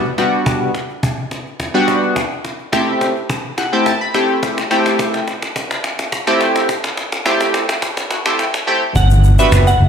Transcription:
0.05 cajon slap
0.18 synth keys G3 B3 D4 F#4, cajon slap
0.33 cajon slap
0.46 cajon bass, cajon slap
0.61 cajon slap
0.75 cajon slap
0.90 cajon slap
1.03 cajon bass, cajon slap
1.18 cajon slap
1.31 cajon slap
1.46 cajon slap
1.60 cajon bass, cajon slap
1.74 synth keys G3 B3 D4 F#4, cajon slap
1.88 cajon slap
2.03 cajon slap
2.16 cajon bass, cajon slap
2.31 cajon slap
2.45 cajon slap
2.59 cajon slap
2.72 synth keys A3 C4 E4 G4, cajon bass, cajon slap
2.88 cajon slap
3.01 cajon slap
3.16 cajon slap
3.30 cajon bass, cajon slap
3.45 cajon slap
3.57 synth keys E4 G4 F#5, cajon slap
3.72 synth keys A3 C4 E4 G4 G5, cajon slap
3.86 synth keys A5, cajon bass, cajon slap
4.01 synth keys B5, cajon slap
4.14 synth keys A3 C4 E4 G4, cajon slap
4.29 cajon slap
4.43 cajon bass, cajon slap
4.58 cajon slap
4.71 synth keys A3 C4 E4 G4, cajon slap
4.86 cajon slap
4.99 cajon bass, cajon slap
5.14 cajon slap
5.28 cajon slap
5.42 cajon slap
5.56 cajon bass, cajon slap
5.71 cajon slap
5.84 cajon slap
5.99 cajon slap
6.12 cajon bass, cajon slap
6.27 synth keys A3 C4 E4 G4, cajon slap
6.41 cajon slap
6.56 cajon slap
6.69 cajon bass, cajon slap
6.84 cajon slap
6.97 cajon slap
7.12 cajon slap
7.25 synth keys A3 C4 E4 G4, cajon bass, cajon slap
7.41 cajon slap
7.54 cajon slap
7.69 cajon slap
7.82 cajon bass, cajon slap
7.97 cajon slap
8.10 synth keys E4 F#4, cajon slap
8.25 synth keys A3 C4 E4 G4, cajon slap
8.39 cajon slap
8.54 cajon slap
8.67 synth keys A3 C4 E4 G4
8.82 cajon slap
8.95 fingered electric bass G1, synth pluck F#5, cajon bass, impact, shaker
9.10 cajon slap, shaker
9.24 cajon slap, shaker
9.39 synth keys B3 D4 F#4 G4 B4, synth pluck E5, cajon slap, shaker
9.52 fingered electric bass F#1, cajon bass, cajon slap, shaker
9.67 synth pluck F#5, cajon slap, shaker
9.80 fingered electric bass F#1, cajon slap

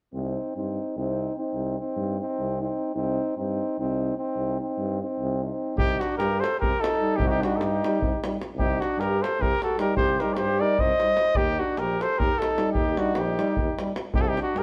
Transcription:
0.13 tuba C2, trombone C4, euphonium D#4
0.56 tuba G2, trombone C4, euphonium D#4
0.97 tuba C2, trombone C4, euphonium D#4
1.37 trombone C4, euphonium D#4
1.54 tuba C2
1.79 trombone C4, euphonium D#4
1.96 tuba G2
2.20 trombone C4, euphonium D#4
2.39 tuba C2
2.60 trombone C4, euphonium D#4
2.95 tuba C2, trombone C4, euphonium D#4
3.37 tuba G2, trombone C4, euphonium D#4
3.79 tuba C2, trombone C4, euphonium D#4
4.17 trombone C4, euphonium D#4
4.36 tuba C2
4.60 trombone C4, euphonium D#4
4.77 tuba G2
5.02 trombone C4, euphonium D#4
5.20 tuba C2
5.40 trombone C4, euphonium D#4
5.77 tuba C2, flugelhorn D#4, trumpet G4, davul low
5.90 davul high
6.00 flugelhorn D4, trumpet F#4, davul high
6.18 tuba G2, flugelhorn G4, trumpet A#4, davul high
6.40 flugelhorn A4, trumpet C5, davul high
6.59 tuba C2, flugelhorn G4, trumpet A#4, davul low
6.80 flugelhorn D#4, trumpet A4, davul high
6.93 davul high
7.01 trombone G3, euphonium D#4
7.16 tuba C2, flugelhorn D#4, trumpet G4, davul low
7.26 flugelhorn D#4, trumpet F#4 G4
7.31 davul high
7.41 trombone G3, flugelhorn D4, euphonium D#4, trumpet F#4, davul high
7.54 flugelhorn D#4 F#4, trumpet A4
7.58 tuba G2, trumpet G4, davul high
7.84 trombone G3, euphonium D#4, davul high
8.00 tuba C2, davul low
8.23 trombone G3, euphonium D#4, davul high
8.32 davul high
8.41 davul high
8.55 tuba C2, flugelhorn D#4, trumpet G4, davul low
8.71 davul high
8.80 flugelhorn D4, trumpet F#4, davul high
8.98 tuba G2, flugelhorn G4, trumpet A#4, davul high
9.22 flugelhorn A4, trumpet C5, davul high
9.39 tuba C2, flugelhorn G4, trumpet A#4, davul low
9.62 flugelhorn F#4, trumpet A4, davul high
9.71 davul high
9.78 trombone G3, euphonium D#4, flugelhorn G4, trumpet A#4, davul high
9.95 tuba C2, flugelhorn G4, trumpet C5, davul low
10.09 davul high
10.19 trombone G3, euphonium D#4, flugelhorn G4, trumpet A#4, davul high
10.29 davul high
10.33 flugelhorn A#4, trumpet C5 D5, davul high
10.38 tuba G2, flugelhorn G4
10.60 trombone G3, euphonium D#4, flugelhorn A#4, trumpet D5
10.79 tuba C2, flugelhorn C5, trumpet D#5, davul low
11.00 trombone G3, euphonium D#4, davul high
11.17 davul high
11.28 davul high
11.35 tuba D#2, flugelhorn D#4, trumpet G4, davul low
11.49 davul high
11.58 flugelhorn D4, trumpet F#4
11.77 tuba A#1, flugelhorn G4, trumpet A#4, davul high
12.00 flugelhorn A4, trumpet C5, davul high
12.18 tuba D#2, flugelhorn G4, trumpet A#4, davul low
12.38 flugelhorn D#4, trumpet A4, davul high
12.50 davul high
12.57 trombone G3, euphonium D#4, davul high
12.73 tuba D#2, flugelhorn D#4, trumpet G4, davul low
12.86 davul high
12.96 trombone G3, flugelhorn D4, euphonium D#4, trumpet F#4, davul high
13.15 tuba A#1, flugelhorn D#4, trumpet G4, davul high
13.38 trombone G3, euphonium D#4, davul high
13.57 tuba D#2, davul low
13.78 trombone G3, euphonium D#4, davul high
13.88 davul high
13.96 davul high
14.14 tuba C2, flugelhorn D#4, trumpet G4, davul low
14.20 flugelhorn F#4, trumpet A4
14.26 flugelhorn D#4, trumpet G4, davul high
14.37 flugelhorn D4, davul high
14.42 trumpet F#4
14.55 tuba G2, flugelhorn G4, trumpet A#4, davul high

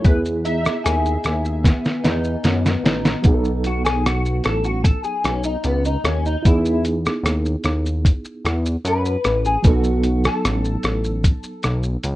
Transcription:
Already playing: clean electric guitar A3 D#4
0.02 analog synth bass E2, reed electric piano B3 E4, synth keys B4, kick, closed hi-hat, shaker
0.07 reed electric piano G#4
0.25 shaker
0.45 clean electric guitar D#4, synth keys E5, closed hi-hat, shaker
0.65 cross-stick, shaker
0.84 analog synth bass D#2, clean electric guitar G#4, cross-stick, closed hi-hat, shaker
1.06 shaker
1.24 analog synth bass D#2, cross-stick, closed hi-hat, shaker
1.45 shaker
1.64 clean electric guitar B3, kick, snare, closed hi-hat, shaker
1.85 snare, shaker
2.04 analog synth bass E2, clean electric guitar D#4, snare, closed hi-hat, shaker
2.24 shaker
2.44 analog synth bass F#2, clean electric guitar B3, snare, closed hi-hat, shaker
2.66 snare, shaker
2.83 analog synth bass A1, clean electric guitar D#4, snare, closed hi-hat, shaker
3.05 snare, shaker
3.22 analog synth bass B1, reed electric piano F#3 B3 D#4, kick, closed hi-hat, shaker
3.27 reed electric piano G#4
3.34 reed electric piano A4
3.45 shaker
3.64 clean electric guitar F#4, closed hi-hat, shaker
3.85 clean electric guitar G#4, cross-stick, shaker
4.06 clean electric guitar F#4, cross-stick, closed hi-hat, shaker
4.25 shaker
4.44 analog synth bass A1, clean electric guitar A4, cross-stick, closed hi-hat, shaker
4.64 clean electric guitar F#4, shaker
4.84 clean electric guitar A4, kick, closed hi-hat, shaker
5.04 clean electric guitar G#4, shaker
5.24 analog synth bass B1, clean electric guitar C#4, cross-stick, closed hi-hat, shaker
5.43 clean electric guitar D#4, shaker
5.64 analog synth bass C#2, clean electric guitar B3, closed hi-hat, shaker
5.85 clean electric guitar D#4, shaker
6.04 analog synth bass D#2, clean electric guitar C#4, cross-stick, closed hi-hat, shaker
6.26 clean electric guitar D#4, shaker
6.43 analog synth bass E2, reed electric piano B3 D#4 E4, clean electric guitar E4, kick, closed hi-hat, shaker
6.48 reed electric piano G#4
6.65 shaker
6.85 closed hi-hat, shaker
7.06 cross-stick, shaker
7.24 analog synth bass D#2, cross-stick, closed hi-hat, shaker
7.45 shaker
7.64 analog synth bass D#2, cross-stick, closed hi-hat, shaker
7.86 shaker
8.05 kick, closed hi-hat, shaker
8.25 shaker
8.45 analog synth bass E2, cross-stick, closed hi-hat, shaker
8.66 shaker
8.85 analog synth bass F#2, clean electric guitar B4, closed hi-hat, shaker
9.05 shaker
9.24 analog synth bass A1, cross-stick, closed hi-hat, shaker
9.45 clean electric guitar G#4, shaker
9.62 analog synth bass B1, reed electric piano F#3 B3, clean electric guitar F#4, kick, closed hi-hat, shaker
9.66 reed electric piano D#4 A4
9.84 shaker
10.03 closed hi-hat, shaker
10.24 clean electric guitar A4, cross-stick, shaker
10.45 analog synth bass A1, cross-stick, closed hi-hat, shaker
10.65 shaker
10.83 analog synth bass A1, cross-stick, closed hi-hat, shaker
11.04 shaker
11.24 kick, closed hi-hat, shaker
11.43 shaker
11.63 analog synth bass B1, cross-stick, closed hi-hat, shaker
11.83 shaker
12.03 analog synth bass C#2, closed hi-hat, shaker

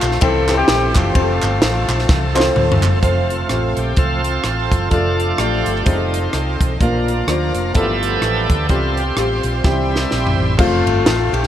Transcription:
Already playing: tonewheel organ F3 A3 C4 A4, saxophone section A3 C4 F4
0.02 fingered electric bass A#1, clap, ride bell
0.11 snare
0.21 fingered electric bass C2, upright piano C3 C4 E4 G4 C5, tonewheel organ E3 G3 C4 G4, saxophone section C4 E4 A4, kick, ride bell
0.48 upright piano C4 E4 G4 B4, snare, clap, ride bell
0.55 saxophone section C4 E4 G4, upright piano C5
0.68 fingered electric bass A#1, snare, ride bell
0.95 fingered electric bass F#1, saxophone section A3 C4 F4, kick, clap, ride bell
1.14 fingered electric bass F1, tonewheel organ F3 A3 C4 A4, upright piano C4 F4 G4 C5, kick, ride bell
1.21 upright piano A4
1.42 fingered electric bass G1, clap, ride bell
1.61 fingered electric bass A1, snare, ride bell
1.88 fingered electric bass A#1, clap, ride bell
1.99 snare
2.09 fingered electric bass C2, kick, snare
2.34 upright piano C4 F4 A4 C5, clap
2.40 snare
2.56 fingered electric bass D2, mid tom
2.72 floor tom
2.83 fingered electric bass F#1, clap
3.01 fingered electric bass F1, tonewheel organ F3 A3 C4 F4, upright piano C4 F4 A4 C5, string section F4 A4 C5 F5, kick, closed hi-hat
3.30 closed hi-hat
3.49 fingered electric bass A1, upright piano C4 F4 A4 C5, cross-stick, closed hi-hat
3.77 fingered electric bass A#1, tonewheel organ G4, closed hi-hat
3.97 fingered electric bass C2, tonewheel organ F3 A3 C4 F4 A4, kick, closed hi-hat
4.24 closed hi-hat
4.44 fingered electric bass A1, tonewheel organ C4 F4 A4, cross-stick, closed hi-hat
4.72 fingered electric bass F#1, kick, closed hi-hat
4.90 fingered electric bass F1, tonewheel organ F3 A3 D4 F4 A4, upright piano A3 D4 F4 A4, string section D5, kick, closed hi-hat
5.20 closed hi-hat
5.38 fingered electric bass A1, upright piano A3 D4 F4 A4, tonewheel organ D4 G4, cross-stick, closed hi-hat
5.66 fingered electric bass G1, closed hi-hat
5.76 cross-stick
5.84 fingered electric bass F1, tonewheel organ G3 A3 C4 D#4 F4, upright piano C4 D#4 F4 G#4, string section A4 C5 D#5, kick, closed hi-hat
5.92 upright piano A4
6.14 closed hi-hat
6.33 fingered electric bass C2, cross-stick, closed hi-hat
6.61 fingered electric bass B1, kick, closed hi-hat
6.81 fingered electric bass A#1, upright piano A#2 A#3 D4 F4 A#4, tonewheel organ F3 A#3 D4 F4, string section A#4 D5 A#5, kick, closed hi-hat
7.08 closed hi-hat
7.27 fingered electric bass D2, upright piano A#3 D4 F4 C5, cross-stick, closed hi-hat
7.54 fingered electric bass F1, closed hi-hat
7.74 fingered electric bass G1, upright piano G2 B3 E4 F4 A4, tonewheel organ F3 A3 B3 D4 G4 A4 E5, string section B4 E5 A5, kick, closed hi-hat
8.03 cross-stick, closed hi-hat
8.21 fingered electric bass A1, cross-stick, closed hi-hat
8.50 fingered electric bass D2, kick, closed hi-hat
8.69 fingered electric bass C2, upright piano C3 G3 C4 F4 G4, tonewheel organ G3 C4 F4 A4, string section C5 F5 G5 C6, kick, closed hi-hat
8.91 tonewheel organ A4
8.97 tonewheel organ C4 G4, closed hi-hat
9.16 fingered electric bass A1, upright piano G3 C4 F4 G4, cross-stick, closed hi-hat
9.43 fingered electric bass A#1, closed hi-hat
9.63 fingered electric bass C2, upright piano C3 G3 C4 E4 G4, tonewheel organ G3 C4 E4 G4, string section E5, kick, snare
9.96 snare
10.02 tonewheel organ A4
10.11 fingered electric bass A#1, tonewheel organ C4 E4 G4, snare
10.27 floor tom
10.39 fingered electric bass A1
10.57 fingered electric bass F1, tonewheel organ A3 C4 F4, upright piano A3 C4 F4 G#4 C5, saxophone section A3 C4 F4, kick, crash
10.65 upright piano A4
10.86 fingered electric bass G1, ride bell
11.06 fingered electric bass A1, snare, ride bell
11.32 fingered electric bass A#1, saxophone section G4, ride bell
11.43 snare

